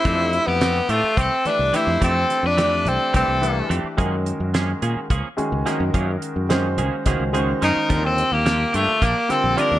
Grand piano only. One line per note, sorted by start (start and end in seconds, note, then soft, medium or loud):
0.04 1.11 E3 medium
0.04 1.12 A3 medium
0.04 1.12 D4 medium
0.04 1.12 G4 medium
0.04 1.12 A4 medium
1.46 1.72 E3 medium
1.46 1.72 A3 medium
1.46 1.72 D4 medium
1.46 1.72 G4 medium
1.46 1.73 B4 medium
1.73 2.53 E3 medium
1.73 2.53 A3 medium
1.73 2.53 D4 medium
1.73 2.54 G4 medium
1.73 2.54 B4 medium
2.57 3.11 E3 medium
2.57 3.11 A3 medium
2.57 3.11 D4 medium
2.57 3.11 G4 medium
2.57 3.11 D5 medium
3.14 3.40 E3 medium
3.14 3.40 A3 medium
3.14 3.40 D4 medium
3.14 3.40 G4 medium
3.14 3.41 B4 medium
3.41 3.95 E3 medium
3.41 3.95 A3 medium
3.41 3.95 D4 medium
3.41 3.95 G4 medium
3.41 3.95 B4 medium
3.97 5.04 D#3 medium
3.97 5.04 G#3 medium
3.97 5.04 C#4 medium
3.97 5.04 F#4 medium
3.97 5.04 A#4 medium
5.37 5.64 D#3 medium
5.37 5.64 G#3 medium
5.37 5.64 C#4 medium
5.37 5.64 F#4 medium
5.37 5.65 G#4 medium
5.66 6.46 D#3 medium
5.66 6.46 G#3 medium
5.66 6.46 C#4 medium
5.66 6.46 F#4 medium
5.66 6.46 A#4 medium
6.49 7.03 D#3 medium
6.49 7.03 G#3 medium
6.49 7.03 C#4 medium
6.49 7.03 F#4 medium
6.49 7.03 C5 loud
7.06 7.31 D#3 medium
7.06 7.31 G#3 medium
7.06 7.32 C#4 medium
7.06 7.32 F#4 medium
7.06 7.32 C5 medium
7.33 7.87 D#3 medium
7.33 7.87 G#3 medium
7.33 7.87 C#4 medium
7.33 7.87 F#4 medium
7.33 7.87 C5 loud
7.89 8.95 D3 medium
7.89 8.96 G3 medium
7.89 8.96 C4 medium
7.89 8.96 F4 medium
7.89 8.96 A#4 medium
9.29 9.55 D3 medium
9.29 9.55 G3 medium
9.29 9.55 C4 medium
9.29 9.56 F4 medium
9.29 9.56 A#4 medium
9.56 9.79 D3 medium
9.56 9.79 G3 medium
9.56 9.79 C4 medium
9.56 9.79 F4 medium
9.56 9.79 A#4 medium